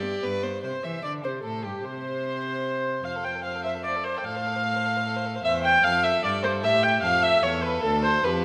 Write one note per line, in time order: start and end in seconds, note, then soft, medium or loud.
0.00 0.18 G2 medium
0.00 0.10 B3 medium
0.00 0.24 G4 medium
0.00 0.43 D5 medium
0.22 0.59 G2 medium
0.22 0.30 B3 medium
0.22 0.45 B4 loud
0.43 0.51 B3 medium
0.43 0.63 C5 medium
0.63 0.72 C3 medium
0.63 0.85 C5 medium
0.83 1.04 E3 medium
0.83 1.03 E5 medium
1.03 1.26 D3 medium
1.03 1.11 D5 medium
1.03 1.12 D5 medium
1.24 1.44 C3 medium
1.24 1.32 C5 medium
1.24 1.43 C5 medium
1.24 1.32 C5 medium
1.43 1.66 A2 medium
1.43 1.63 A4 medium
1.43 1.65 A4 medium
1.43 1.66 A4 medium
1.64 1.84 G2 medium
1.64 1.83 G4 soft
1.64 1.86 G4 medium
1.83 3.02 C3 medium
1.83 3.01 C5 medium
1.83 3.04 C5 medium
1.83 3.06 C5 medium
3.04 4.21 F2 medium
3.04 3.17 C5 medium
3.04 3.26 F5 medium
3.04 3.13 F5 medium
3.15 3.26 A4 medium
3.24 3.36 C5 soft
3.24 3.43 G5 medium
3.24 3.45 G5 medium
3.35 3.45 A4 medium
3.43 3.57 C5 medium
3.43 3.64 F5 medium
3.43 3.63 F5 medium
3.55 3.67 A4 soft
3.64 3.76 C5 medium
3.64 3.72 E5 medium
3.64 3.83 E5 medium
3.75 3.84 A4 medium
3.84 3.97 C5 medium
3.84 3.92 D5 medium
3.84 4.06 D5 medium
3.96 4.08 A4 medium
4.03 4.25 C5 medium
4.03 4.19 C5 medium
4.03 4.18 C5 medium
4.16 4.25 A4 medium
4.16 4.26 G5 medium
4.23 5.42 A2 medium
4.23 4.38 A4 medium
4.23 5.43 F5 medium
4.23 5.44 F5 loud
4.36 4.48 C5 medium
4.46 4.57 A4 medium
4.56 4.65 C5 medium
4.66 4.77 A4 medium
4.76 4.87 C5 medium
4.86 4.98 A4 medium
4.96 5.05 C5 medium
5.06 5.17 A4 medium
5.16 5.27 C5 medium
5.26 5.37 A4 medium
5.35 5.45 C5 medium
5.43 5.81 E2 medium
5.43 5.82 C5 medium
5.43 5.63 E5 loud
5.43 5.52 E5 loud
5.64 5.83 G5 loud
5.64 5.85 G5 loud
5.84 6.23 F2 medium
5.84 6.65 A4 medium
5.84 6.05 F5 loud
5.84 6.03 F5 loud
6.03 6.11 E5 loud
6.03 6.23 E5 loud
6.23 6.65 G2 medium
6.23 6.44 D5 loud
6.23 6.32 D5 loud
6.43 6.62 C5 medium
6.43 6.51 C5 loud
6.63 7.03 A2 medium
6.63 7.05 G4 medium
6.63 6.82 E5 loud
6.63 6.85 E5 loud
6.82 6.90 G5 loud
6.82 7.02 G5 loud
7.02 7.43 F2 medium
7.02 7.43 A4 medium
7.02 7.24 F5 loud
7.02 7.25 F5 loud
7.22 7.42 E5 loud
7.22 7.45 E5 loud
7.43 7.83 E2 medium
7.43 8.26 A4 medium
7.43 7.51 C#5 loud
7.43 7.65 C#5 loud
7.63 7.82 B4 loud
7.63 7.82 B4 medium
7.83 8.23 D2 medium
7.83 8.04 A4 loud
7.83 7.91 A4 loud
8.02 8.23 C5 loud
8.02 8.25 C5 loud
8.24 8.45 F2 medium
8.24 8.45 G4 medium
8.24 8.45 B4 medium
8.24 8.45 B4 loud